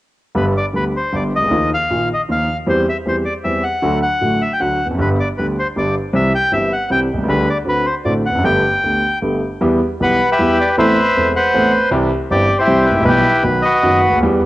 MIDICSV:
0, 0, Header, 1, 3, 480
1, 0, Start_track
1, 0, Key_signature, 1, "major"
1, 0, Tempo, 385604
1, 448, Time_signature, 3, 2, 24, 8
1, 11974, Key_signature, 1, "minor"
1, 17997, End_track
2, 0, Start_track
2, 0, Title_t, "Bandoneon"
2, 0, Program_c, 0, 23
2, 458, Note_on_c, 0, 71, 59
2, 565, Note_off_c, 0, 71, 0
2, 714, Note_on_c, 0, 74, 61
2, 818, Note_off_c, 0, 74, 0
2, 946, Note_on_c, 0, 71, 59
2, 1053, Note_off_c, 0, 71, 0
2, 1203, Note_on_c, 0, 72, 55
2, 1434, Note_on_c, 0, 74, 51
2, 1439, Note_off_c, 0, 72, 0
2, 1539, Note_off_c, 0, 74, 0
2, 1686, Note_on_c, 0, 75, 62
2, 2121, Note_off_c, 0, 75, 0
2, 2163, Note_on_c, 0, 77, 68
2, 2598, Note_off_c, 0, 77, 0
2, 2657, Note_on_c, 0, 75, 65
2, 2756, Note_off_c, 0, 75, 0
2, 2880, Note_on_c, 0, 77, 66
2, 3203, Note_off_c, 0, 77, 0
2, 3350, Note_on_c, 0, 72, 70
2, 3564, Note_off_c, 0, 72, 0
2, 3598, Note_on_c, 0, 76, 72
2, 3699, Note_off_c, 0, 76, 0
2, 3832, Note_on_c, 0, 72, 61
2, 3934, Note_off_c, 0, 72, 0
2, 4046, Note_on_c, 0, 74, 68
2, 4153, Note_off_c, 0, 74, 0
2, 4281, Note_on_c, 0, 76, 64
2, 4522, Note_on_c, 0, 78, 71
2, 4529, Note_off_c, 0, 76, 0
2, 4969, Note_off_c, 0, 78, 0
2, 5012, Note_on_c, 0, 78, 79
2, 5498, Note_on_c, 0, 76, 64
2, 5504, Note_off_c, 0, 78, 0
2, 5637, Note_off_c, 0, 76, 0
2, 5639, Note_on_c, 0, 79, 54
2, 5725, Note_on_c, 0, 78, 63
2, 5728, Note_off_c, 0, 79, 0
2, 6067, Note_off_c, 0, 78, 0
2, 6237, Note_on_c, 0, 71, 63
2, 6341, Note_off_c, 0, 71, 0
2, 6472, Note_on_c, 0, 74, 72
2, 6578, Note_off_c, 0, 74, 0
2, 6694, Note_on_c, 0, 71, 62
2, 6803, Note_off_c, 0, 71, 0
2, 6960, Note_on_c, 0, 72, 63
2, 7063, Note_off_c, 0, 72, 0
2, 7192, Note_on_c, 0, 74, 64
2, 7407, Note_off_c, 0, 74, 0
2, 7659, Note_on_c, 0, 76, 76
2, 7878, Note_off_c, 0, 76, 0
2, 7904, Note_on_c, 0, 79, 85
2, 8119, Note_off_c, 0, 79, 0
2, 8130, Note_on_c, 0, 76, 69
2, 8373, Note_off_c, 0, 76, 0
2, 8376, Note_on_c, 0, 78, 70
2, 8590, Note_off_c, 0, 78, 0
2, 8610, Note_on_c, 0, 79, 73
2, 8715, Note_off_c, 0, 79, 0
2, 9075, Note_on_c, 0, 71, 74
2, 9322, Note_off_c, 0, 71, 0
2, 9329, Note_on_c, 0, 74, 72
2, 9433, Note_off_c, 0, 74, 0
2, 9566, Note_on_c, 0, 71, 72
2, 9783, Note_off_c, 0, 71, 0
2, 9784, Note_on_c, 0, 72, 66
2, 9894, Note_off_c, 0, 72, 0
2, 10019, Note_on_c, 0, 74, 64
2, 10131, Note_off_c, 0, 74, 0
2, 10281, Note_on_c, 0, 78, 70
2, 10502, Note_off_c, 0, 78, 0
2, 10512, Note_on_c, 0, 79, 80
2, 11435, Note_off_c, 0, 79, 0
2, 12472, Note_on_c, 0, 71, 64
2, 12487, Note_on_c, 0, 78, 90
2, 12813, Note_off_c, 0, 78, 0
2, 12819, Note_off_c, 0, 71, 0
2, 12838, Note_on_c, 0, 71, 60
2, 12842, Note_on_c, 0, 67, 66
2, 12846, Note_on_c, 0, 76, 79
2, 13171, Note_off_c, 0, 76, 0
2, 13203, Note_on_c, 0, 74, 70
2, 13307, Note_off_c, 0, 74, 0
2, 13390, Note_off_c, 0, 71, 0
2, 13392, Note_off_c, 0, 67, 0
2, 13427, Note_on_c, 0, 72, 60
2, 13428, Note_on_c, 0, 76, 84
2, 13432, Note_on_c, 0, 71, 65
2, 14094, Note_off_c, 0, 72, 0
2, 14095, Note_off_c, 0, 76, 0
2, 14096, Note_off_c, 0, 71, 0
2, 14139, Note_on_c, 0, 78, 81
2, 14142, Note_on_c, 0, 72, 60
2, 14148, Note_on_c, 0, 71, 61
2, 14584, Note_off_c, 0, 78, 0
2, 14806, Note_off_c, 0, 72, 0
2, 14809, Note_off_c, 0, 71, 0
2, 15327, Note_on_c, 0, 74, 83
2, 15328, Note_on_c, 0, 67, 62
2, 15655, Note_off_c, 0, 74, 0
2, 15669, Note_on_c, 0, 72, 83
2, 15671, Note_off_c, 0, 67, 0
2, 15689, Note_on_c, 0, 67, 57
2, 15695, Note_on_c, 0, 64, 56
2, 16001, Note_on_c, 0, 71, 71
2, 16002, Note_off_c, 0, 72, 0
2, 16115, Note_off_c, 0, 71, 0
2, 16233, Note_off_c, 0, 67, 0
2, 16237, Note_off_c, 0, 64, 0
2, 16238, Note_on_c, 0, 71, 83
2, 16281, Note_on_c, 0, 67, 56
2, 16284, Note_on_c, 0, 64, 57
2, 16719, Note_off_c, 0, 67, 0
2, 16721, Note_off_c, 0, 64, 0
2, 16954, Note_on_c, 0, 75, 80
2, 16970, Note_off_c, 0, 71, 0
2, 16987, Note_on_c, 0, 66, 57
2, 16988, Note_on_c, 0, 71, 61
2, 17422, Note_off_c, 0, 75, 0
2, 17669, Note_off_c, 0, 66, 0
2, 17670, Note_off_c, 0, 71, 0
2, 17997, End_track
3, 0, Start_track
3, 0, Title_t, "Grand piano"
3, 0, Program_c, 1, 0
3, 434, Note_on_c, 1, 59, 50
3, 436, Note_on_c, 1, 50, 55
3, 437, Note_on_c, 1, 43, 67
3, 438, Note_on_c, 1, 67, 58
3, 439, Note_on_c, 1, 31, 65
3, 442, Note_on_c, 1, 55, 51
3, 645, Note_off_c, 1, 59, 0
3, 646, Note_off_c, 1, 43, 0
3, 646, Note_off_c, 1, 50, 0
3, 647, Note_off_c, 1, 31, 0
3, 647, Note_off_c, 1, 67, 0
3, 649, Note_off_c, 1, 55, 0
3, 913, Note_on_c, 1, 50, 38
3, 922, Note_on_c, 1, 67, 34
3, 923, Note_on_c, 1, 55, 28
3, 923, Note_on_c, 1, 59, 32
3, 926, Note_on_c, 1, 38, 37
3, 1132, Note_off_c, 1, 50, 0
3, 1132, Note_off_c, 1, 67, 0
3, 1133, Note_off_c, 1, 55, 0
3, 1133, Note_off_c, 1, 59, 0
3, 1135, Note_off_c, 1, 38, 0
3, 1399, Note_on_c, 1, 50, 35
3, 1403, Note_on_c, 1, 43, 43
3, 1408, Note_on_c, 1, 55, 32
3, 1411, Note_on_c, 1, 59, 30
3, 1413, Note_on_c, 1, 67, 41
3, 1414, Note_on_c, 1, 31, 42
3, 1611, Note_off_c, 1, 50, 0
3, 1613, Note_off_c, 1, 43, 0
3, 1616, Note_off_c, 1, 55, 0
3, 1617, Note_off_c, 1, 59, 0
3, 1618, Note_off_c, 1, 67, 0
3, 1619, Note_off_c, 1, 31, 0
3, 1708, Note_on_c, 1, 36, 35
3, 1771, Note_on_c, 1, 37, 49
3, 1774, Note_off_c, 1, 36, 0
3, 1833, Note_on_c, 1, 38, 57
3, 1836, Note_off_c, 1, 37, 0
3, 1879, Note_on_c, 1, 39, 61
3, 1879, Note_on_c, 1, 51, 67
3, 1881, Note_on_c, 1, 58, 55
3, 1882, Note_on_c, 1, 53, 49
3, 1884, Note_on_c, 1, 65, 59
3, 1896, Note_off_c, 1, 38, 0
3, 2091, Note_off_c, 1, 39, 0
3, 2092, Note_off_c, 1, 58, 0
3, 2093, Note_off_c, 1, 51, 0
3, 2093, Note_off_c, 1, 53, 0
3, 2094, Note_off_c, 1, 65, 0
3, 2369, Note_on_c, 1, 34, 40
3, 2370, Note_on_c, 1, 51, 34
3, 2374, Note_on_c, 1, 53, 29
3, 2376, Note_on_c, 1, 46, 42
3, 2377, Note_on_c, 1, 65, 41
3, 2382, Note_on_c, 1, 58, 31
3, 2576, Note_off_c, 1, 34, 0
3, 2576, Note_off_c, 1, 51, 0
3, 2578, Note_off_c, 1, 53, 0
3, 2579, Note_off_c, 1, 46, 0
3, 2580, Note_off_c, 1, 65, 0
3, 2582, Note_off_c, 1, 58, 0
3, 2847, Note_on_c, 1, 58, 35
3, 2848, Note_on_c, 1, 51, 40
3, 2851, Note_on_c, 1, 65, 45
3, 2857, Note_on_c, 1, 53, 33
3, 2858, Note_on_c, 1, 39, 43
3, 3053, Note_off_c, 1, 58, 0
3, 3055, Note_off_c, 1, 65, 0
3, 3056, Note_off_c, 1, 51, 0
3, 3058, Note_off_c, 1, 53, 0
3, 3059, Note_off_c, 1, 39, 0
3, 3317, Note_on_c, 1, 52, 68
3, 3319, Note_on_c, 1, 55, 55
3, 3320, Note_on_c, 1, 40, 62
3, 3327, Note_on_c, 1, 67, 65
3, 3328, Note_on_c, 1, 60, 57
3, 3527, Note_off_c, 1, 55, 0
3, 3528, Note_off_c, 1, 40, 0
3, 3528, Note_off_c, 1, 52, 0
3, 3531, Note_off_c, 1, 60, 0
3, 3531, Note_off_c, 1, 67, 0
3, 3804, Note_on_c, 1, 52, 43
3, 3806, Note_on_c, 1, 67, 37
3, 3808, Note_on_c, 1, 40, 39
3, 3810, Note_on_c, 1, 55, 35
3, 3811, Note_on_c, 1, 60, 35
3, 4008, Note_off_c, 1, 52, 0
3, 4008, Note_off_c, 1, 67, 0
3, 4009, Note_off_c, 1, 40, 0
3, 4010, Note_off_c, 1, 55, 0
3, 4010, Note_off_c, 1, 60, 0
3, 4284, Note_on_c, 1, 52, 46
3, 4286, Note_on_c, 1, 67, 42
3, 4290, Note_on_c, 1, 40, 42
3, 4292, Note_on_c, 1, 60, 37
3, 4295, Note_on_c, 1, 55, 34
3, 4486, Note_off_c, 1, 52, 0
3, 4486, Note_off_c, 1, 67, 0
3, 4488, Note_off_c, 1, 40, 0
3, 4489, Note_off_c, 1, 60, 0
3, 4491, Note_off_c, 1, 55, 0
3, 4757, Note_on_c, 1, 50, 69
3, 4761, Note_on_c, 1, 57, 53
3, 4765, Note_on_c, 1, 38, 69
3, 4766, Note_on_c, 1, 54, 52
3, 4767, Note_on_c, 1, 66, 64
3, 4964, Note_off_c, 1, 57, 0
3, 4965, Note_off_c, 1, 50, 0
3, 4966, Note_off_c, 1, 38, 0
3, 4966, Note_off_c, 1, 54, 0
3, 4967, Note_off_c, 1, 66, 0
3, 5243, Note_on_c, 1, 50, 33
3, 5243, Note_on_c, 1, 54, 30
3, 5244, Note_on_c, 1, 33, 38
3, 5250, Note_on_c, 1, 45, 38
3, 5250, Note_on_c, 1, 66, 34
3, 5252, Note_on_c, 1, 57, 31
3, 5446, Note_off_c, 1, 50, 0
3, 5446, Note_off_c, 1, 54, 0
3, 5447, Note_off_c, 1, 33, 0
3, 5450, Note_off_c, 1, 45, 0
3, 5450, Note_off_c, 1, 66, 0
3, 5451, Note_off_c, 1, 57, 0
3, 5726, Note_on_c, 1, 50, 42
3, 5731, Note_on_c, 1, 54, 33
3, 5731, Note_on_c, 1, 66, 41
3, 5732, Note_on_c, 1, 38, 44
3, 5734, Note_on_c, 1, 57, 32
3, 5932, Note_off_c, 1, 50, 0
3, 5935, Note_off_c, 1, 54, 0
3, 5935, Note_off_c, 1, 66, 0
3, 5936, Note_off_c, 1, 38, 0
3, 5937, Note_off_c, 1, 57, 0
3, 6041, Note_on_c, 1, 40, 35
3, 6098, Note_off_c, 1, 40, 0
3, 6107, Note_on_c, 1, 41, 44
3, 6159, Note_on_c, 1, 42, 52
3, 6161, Note_off_c, 1, 41, 0
3, 6208, Note_on_c, 1, 43, 60
3, 6208, Note_on_c, 1, 50, 52
3, 6208, Note_on_c, 1, 55, 50
3, 6208, Note_on_c, 1, 67, 61
3, 6212, Note_on_c, 1, 59, 50
3, 6214, Note_on_c, 1, 31, 61
3, 6218, Note_off_c, 1, 42, 0
3, 6415, Note_off_c, 1, 43, 0
3, 6415, Note_off_c, 1, 50, 0
3, 6415, Note_off_c, 1, 55, 0
3, 6415, Note_off_c, 1, 67, 0
3, 6417, Note_off_c, 1, 59, 0
3, 6418, Note_off_c, 1, 31, 0
3, 6702, Note_on_c, 1, 38, 39
3, 6704, Note_on_c, 1, 55, 29
3, 6705, Note_on_c, 1, 50, 37
3, 6707, Note_on_c, 1, 67, 35
3, 6708, Note_on_c, 1, 59, 29
3, 6903, Note_off_c, 1, 38, 0
3, 6904, Note_off_c, 1, 55, 0
3, 6905, Note_off_c, 1, 50, 0
3, 6906, Note_off_c, 1, 59, 0
3, 6906, Note_off_c, 1, 67, 0
3, 7170, Note_on_c, 1, 50, 36
3, 7171, Note_on_c, 1, 67, 43
3, 7176, Note_on_c, 1, 43, 45
3, 7176, Note_on_c, 1, 59, 35
3, 7177, Note_on_c, 1, 31, 43
3, 7178, Note_on_c, 1, 55, 35
3, 7375, Note_off_c, 1, 50, 0
3, 7375, Note_off_c, 1, 67, 0
3, 7377, Note_off_c, 1, 59, 0
3, 7378, Note_off_c, 1, 31, 0
3, 7378, Note_off_c, 1, 43, 0
3, 7378, Note_off_c, 1, 55, 0
3, 7632, Note_on_c, 1, 36, 72
3, 7635, Note_on_c, 1, 52, 52
3, 7636, Note_on_c, 1, 48, 67
3, 7636, Note_on_c, 1, 60, 53
3, 7639, Note_on_c, 1, 55, 48
3, 7646, Note_on_c, 1, 67, 62
3, 7842, Note_off_c, 1, 36, 0
3, 7844, Note_off_c, 1, 52, 0
3, 7845, Note_off_c, 1, 48, 0
3, 7845, Note_off_c, 1, 60, 0
3, 7846, Note_off_c, 1, 55, 0
3, 7849, Note_off_c, 1, 67, 0
3, 8114, Note_on_c, 1, 52, 37
3, 8115, Note_on_c, 1, 55, 31
3, 8115, Note_on_c, 1, 60, 31
3, 8120, Note_on_c, 1, 31, 45
3, 8120, Note_on_c, 1, 67, 40
3, 8122, Note_on_c, 1, 43, 42
3, 8320, Note_off_c, 1, 52, 0
3, 8320, Note_off_c, 1, 55, 0
3, 8320, Note_off_c, 1, 60, 0
3, 8323, Note_off_c, 1, 31, 0
3, 8323, Note_off_c, 1, 67, 0
3, 8324, Note_off_c, 1, 43, 0
3, 8588, Note_on_c, 1, 36, 46
3, 8588, Note_on_c, 1, 52, 41
3, 8590, Note_on_c, 1, 55, 36
3, 8596, Note_on_c, 1, 60, 35
3, 8597, Note_on_c, 1, 48, 48
3, 8600, Note_on_c, 1, 67, 47
3, 8793, Note_off_c, 1, 52, 0
3, 8794, Note_off_c, 1, 36, 0
3, 8795, Note_off_c, 1, 55, 0
3, 8798, Note_off_c, 1, 48, 0
3, 8798, Note_off_c, 1, 60, 0
3, 8799, Note_off_c, 1, 67, 0
3, 8885, Note_on_c, 1, 35, 41
3, 8941, Note_on_c, 1, 36, 50
3, 8951, Note_off_c, 1, 35, 0
3, 9004, Note_on_c, 1, 37, 63
3, 9009, Note_off_c, 1, 36, 0
3, 9064, Note_on_c, 1, 55, 56
3, 9065, Note_on_c, 1, 50, 72
3, 9068, Note_on_c, 1, 38, 68
3, 9070, Note_off_c, 1, 37, 0
3, 9070, Note_on_c, 1, 59, 54
3, 9070, Note_on_c, 1, 67, 61
3, 9272, Note_off_c, 1, 55, 0
3, 9274, Note_off_c, 1, 38, 0
3, 9275, Note_off_c, 1, 59, 0
3, 9275, Note_off_c, 1, 67, 0
3, 9277, Note_off_c, 1, 50, 0
3, 9522, Note_on_c, 1, 50, 46
3, 9523, Note_on_c, 1, 57, 32
3, 9527, Note_on_c, 1, 66, 41
3, 9530, Note_on_c, 1, 60, 34
3, 9531, Note_on_c, 1, 38, 39
3, 9739, Note_off_c, 1, 57, 0
3, 9741, Note_off_c, 1, 66, 0
3, 9742, Note_off_c, 1, 50, 0
3, 9743, Note_off_c, 1, 38, 0
3, 9743, Note_off_c, 1, 60, 0
3, 10018, Note_on_c, 1, 33, 43
3, 10022, Note_on_c, 1, 50, 41
3, 10022, Note_on_c, 1, 66, 44
3, 10023, Note_on_c, 1, 57, 37
3, 10023, Note_on_c, 1, 60, 36
3, 10024, Note_on_c, 1, 45, 51
3, 10229, Note_off_c, 1, 33, 0
3, 10230, Note_off_c, 1, 50, 0
3, 10230, Note_off_c, 1, 66, 0
3, 10231, Note_off_c, 1, 45, 0
3, 10231, Note_off_c, 1, 57, 0
3, 10231, Note_off_c, 1, 60, 0
3, 10326, Note_on_c, 1, 40, 38
3, 10391, Note_off_c, 1, 40, 0
3, 10392, Note_on_c, 1, 41, 54
3, 10435, Note_on_c, 1, 42, 61
3, 10454, Note_off_c, 1, 41, 0
3, 10504, Note_on_c, 1, 57, 54
3, 10505, Note_off_c, 1, 42, 0
3, 10508, Note_on_c, 1, 50, 59
3, 10509, Note_on_c, 1, 31, 66
3, 10509, Note_on_c, 1, 43, 74
3, 10513, Note_on_c, 1, 59, 54
3, 10518, Note_on_c, 1, 67, 67
3, 10711, Note_off_c, 1, 57, 0
3, 10714, Note_off_c, 1, 31, 0
3, 10714, Note_off_c, 1, 43, 0
3, 10714, Note_off_c, 1, 50, 0
3, 10716, Note_off_c, 1, 59, 0
3, 10719, Note_off_c, 1, 67, 0
3, 10998, Note_on_c, 1, 57, 34
3, 11003, Note_on_c, 1, 38, 39
3, 11005, Note_on_c, 1, 50, 38
3, 11005, Note_on_c, 1, 67, 34
3, 11008, Note_on_c, 1, 59, 30
3, 11203, Note_off_c, 1, 57, 0
3, 11205, Note_off_c, 1, 38, 0
3, 11206, Note_off_c, 1, 50, 0
3, 11206, Note_off_c, 1, 67, 0
3, 11207, Note_off_c, 1, 59, 0
3, 11476, Note_on_c, 1, 57, 36
3, 11477, Note_on_c, 1, 50, 37
3, 11479, Note_on_c, 1, 67, 43
3, 11480, Note_on_c, 1, 31, 43
3, 11481, Note_on_c, 1, 43, 45
3, 11486, Note_on_c, 1, 59, 33
3, 11686, Note_off_c, 1, 57, 0
3, 11687, Note_off_c, 1, 50, 0
3, 11688, Note_off_c, 1, 67, 0
3, 11689, Note_off_c, 1, 31, 0
3, 11689, Note_off_c, 1, 43, 0
3, 11692, Note_off_c, 1, 59, 0
3, 11959, Note_on_c, 1, 55, 56
3, 11962, Note_on_c, 1, 52, 74
3, 11964, Note_on_c, 1, 40, 72
3, 11965, Note_on_c, 1, 59, 56
3, 11974, Note_on_c, 1, 67, 73
3, 12171, Note_off_c, 1, 55, 0
3, 12173, Note_off_c, 1, 40, 0
3, 12173, Note_off_c, 1, 52, 0
3, 12174, Note_off_c, 1, 59, 0
3, 12178, Note_off_c, 1, 67, 0
3, 12449, Note_on_c, 1, 35, 45
3, 12451, Note_on_c, 1, 52, 37
3, 12454, Note_on_c, 1, 47, 44
3, 12455, Note_on_c, 1, 67, 41
3, 12457, Note_on_c, 1, 55, 35
3, 12459, Note_on_c, 1, 59, 37
3, 12658, Note_off_c, 1, 35, 0
3, 12660, Note_off_c, 1, 52, 0
3, 12661, Note_off_c, 1, 47, 0
3, 12662, Note_off_c, 1, 55, 0
3, 12662, Note_off_c, 1, 67, 0
3, 12664, Note_off_c, 1, 59, 0
3, 12927, Note_on_c, 1, 52, 54
3, 12931, Note_on_c, 1, 55, 40
3, 12935, Note_on_c, 1, 40, 56
3, 12941, Note_on_c, 1, 67, 45
3, 12942, Note_on_c, 1, 59, 43
3, 13140, Note_off_c, 1, 52, 0
3, 13140, Note_off_c, 1, 55, 0
3, 13142, Note_off_c, 1, 40, 0
3, 13145, Note_off_c, 1, 59, 0
3, 13145, Note_off_c, 1, 67, 0
3, 13412, Note_on_c, 1, 59, 58
3, 13417, Note_on_c, 1, 33, 81
3, 13418, Note_on_c, 1, 45, 80
3, 13418, Note_on_c, 1, 60, 68
3, 13419, Note_on_c, 1, 52, 66
3, 13419, Note_on_c, 1, 69, 79
3, 13620, Note_off_c, 1, 59, 0
3, 13622, Note_off_c, 1, 33, 0
3, 13622, Note_off_c, 1, 45, 0
3, 13623, Note_off_c, 1, 52, 0
3, 13623, Note_off_c, 1, 60, 0
3, 13623, Note_off_c, 1, 69, 0
3, 13898, Note_on_c, 1, 40, 47
3, 13899, Note_on_c, 1, 52, 39
3, 13899, Note_on_c, 1, 60, 38
3, 13903, Note_on_c, 1, 59, 41
3, 13907, Note_on_c, 1, 69, 47
3, 13909, Note_on_c, 1, 28, 53
3, 14102, Note_off_c, 1, 40, 0
3, 14102, Note_off_c, 1, 52, 0
3, 14102, Note_off_c, 1, 60, 0
3, 14104, Note_off_c, 1, 59, 0
3, 14106, Note_off_c, 1, 69, 0
3, 14107, Note_off_c, 1, 28, 0
3, 14364, Note_on_c, 1, 52, 45
3, 14366, Note_on_c, 1, 60, 46
3, 14368, Note_on_c, 1, 69, 51
3, 14369, Note_on_c, 1, 33, 55
3, 14369, Note_on_c, 1, 45, 54
3, 14369, Note_on_c, 1, 59, 46
3, 14573, Note_off_c, 1, 52, 0
3, 14574, Note_off_c, 1, 60, 0
3, 14575, Note_off_c, 1, 33, 0
3, 14575, Note_off_c, 1, 45, 0
3, 14575, Note_off_c, 1, 59, 0
3, 14575, Note_off_c, 1, 69, 0
3, 14825, Note_on_c, 1, 48, 82
3, 14826, Note_on_c, 1, 60, 67
3, 14827, Note_on_c, 1, 52, 69
3, 14829, Note_on_c, 1, 55, 61
3, 14832, Note_on_c, 1, 36, 89
3, 14839, Note_on_c, 1, 67, 79
3, 15039, Note_off_c, 1, 48, 0
3, 15039, Note_off_c, 1, 60, 0
3, 15040, Note_off_c, 1, 52, 0
3, 15040, Note_off_c, 1, 55, 0
3, 15042, Note_off_c, 1, 36, 0
3, 15045, Note_off_c, 1, 67, 0
3, 15316, Note_on_c, 1, 52, 40
3, 15317, Note_on_c, 1, 31, 53
3, 15317, Note_on_c, 1, 60, 41
3, 15322, Note_on_c, 1, 55, 37
3, 15323, Note_on_c, 1, 67, 42
3, 15324, Note_on_c, 1, 43, 52
3, 15519, Note_off_c, 1, 31, 0
3, 15519, Note_off_c, 1, 52, 0
3, 15519, Note_off_c, 1, 60, 0
3, 15522, Note_off_c, 1, 55, 0
3, 15522, Note_off_c, 1, 67, 0
3, 15523, Note_off_c, 1, 43, 0
3, 15771, Note_on_c, 1, 52, 42
3, 15774, Note_on_c, 1, 48, 52
3, 15775, Note_on_c, 1, 36, 48
3, 15775, Note_on_c, 1, 55, 41
3, 15781, Note_on_c, 1, 67, 51
3, 15782, Note_on_c, 1, 60, 39
3, 15982, Note_off_c, 1, 52, 0
3, 15983, Note_off_c, 1, 48, 0
3, 15984, Note_off_c, 1, 36, 0
3, 15984, Note_off_c, 1, 55, 0
3, 15987, Note_off_c, 1, 60, 0
3, 15987, Note_off_c, 1, 67, 0
3, 16067, Note_on_c, 1, 32, 47
3, 16135, Note_on_c, 1, 33, 61
3, 16138, Note_off_c, 1, 32, 0
3, 16191, Note_on_c, 1, 34, 66
3, 16202, Note_off_c, 1, 33, 0
3, 16244, Note_on_c, 1, 55, 57
3, 16245, Note_on_c, 1, 35, 79
3, 16245, Note_on_c, 1, 47, 77
3, 16249, Note_on_c, 1, 52, 59
3, 16250, Note_on_c, 1, 59, 60
3, 16254, Note_on_c, 1, 67, 72
3, 16260, Note_off_c, 1, 34, 0
3, 16456, Note_off_c, 1, 55, 0
3, 16457, Note_off_c, 1, 35, 0
3, 16459, Note_off_c, 1, 52, 0
3, 16459, Note_off_c, 1, 59, 0
3, 16460, Note_off_c, 1, 47, 0
3, 16462, Note_off_c, 1, 67, 0
3, 16718, Note_on_c, 1, 51, 41
3, 16721, Note_on_c, 1, 54, 32
3, 16723, Note_on_c, 1, 47, 46
3, 16727, Note_on_c, 1, 35, 45
3, 16727, Note_on_c, 1, 66, 46
3, 16728, Note_on_c, 1, 59, 36
3, 16934, Note_off_c, 1, 51, 0
3, 16936, Note_off_c, 1, 54, 0
3, 16937, Note_off_c, 1, 47, 0
3, 16939, Note_off_c, 1, 35, 0
3, 16939, Note_off_c, 1, 59, 0
3, 16939, Note_off_c, 1, 66, 0
3, 17211, Note_on_c, 1, 54, 41
3, 17212, Note_on_c, 1, 42, 45
3, 17217, Note_on_c, 1, 30, 50
3, 17217, Note_on_c, 1, 51, 43
3, 17218, Note_on_c, 1, 66, 46
3, 17221, Note_on_c, 1, 59, 37
3, 17426, Note_off_c, 1, 42, 0
3, 17426, Note_off_c, 1, 54, 0
3, 17428, Note_off_c, 1, 51, 0
3, 17429, Note_off_c, 1, 30, 0
3, 17429, Note_off_c, 1, 66, 0
3, 17431, Note_off_c, 1, 59, 0
3, 17523, Note_on_c, 1, 37, 42
3, 17575, Note_on_c, 1, 38, 54
3, 17591, Note_off_c, 1, 37, 0
3, 17647, Note_off_c, 1, 38, 0
3, 17648, Note_on_c, 1, 39, 66
3, 17706, Note_on_c, 1, 52, 77
3, 17711, Note_on_c, 1, 55, 61
3, 17712, Note_on_c, 1, 40, 77
3, 17714, Note_off_c, 1, 39, 0
3, 17714, Note_on_c, 1, 67, 77
3, 17718, Note_on_c, 1, 59, 55
3, 17919, Note_off_c, 1, 52, 0
3, 17920, Note_off_c, 1, 55, 0
3, 17921, Note_off_c, 1, 40, 0
3, 17921, Note_off_c, 1, 67, 0
3, 17923, Note_off_c, 1, 59, 0
3, 17997, End_track
0, 0, End_of_file